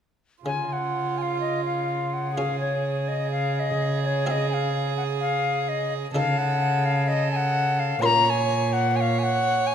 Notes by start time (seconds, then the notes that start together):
0.44 C#3 F4 G#5
0.69 F#5 G#5
1.18 G#5
1.22 F5
1.40 D#5
1.65 F5
2.13 F#5
2.35 C#4 G#4 F5
2.60 C#5
3.08 D#5
3.31 F5
3.55 F5
3.60 D#5
4.03 C#5 D#5
4.26 C4 G#4 F5
4.31 D#5
4.49 G#5
4.54 F5
4.97 F#5
5.20 F5
5.69 D#5
6.14 C#3 D#4 A4 F5
6.38 F#5
6.85 F5
7.08 A4 D#5
7.32 G#5
7.36 F#5
7.80 F5
8.02 A#2 C#4 A#4 C#5 A#5 C6
8.26 A#5
8.30 G#5
8.73 F#5
8.94 C#5 G#5
9.01 F5
9.19 G#5
9.24 F#5
9.67 G#5